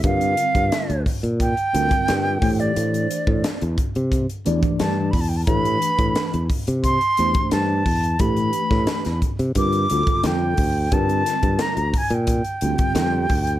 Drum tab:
HH |xxxxxxoxxxxxx-ox|xxx-xxxxxxxxx-o-|xxxxxxoxxxxxx-ox|xxx-xxxxxxxxx-o-|
SD |----o-------o---|----o-------o---|----o-------o---|---ooo------o---|
BD |o--o--o-o--o--o-|---o--o-o--o--o-|o--o--o-o--o--o-|o--o--o-o--o--o-|

HH |xxxxxxoxxxxxx-ox|
SD |--o-o-------o---|
BD |o--o--o-o--o--o-|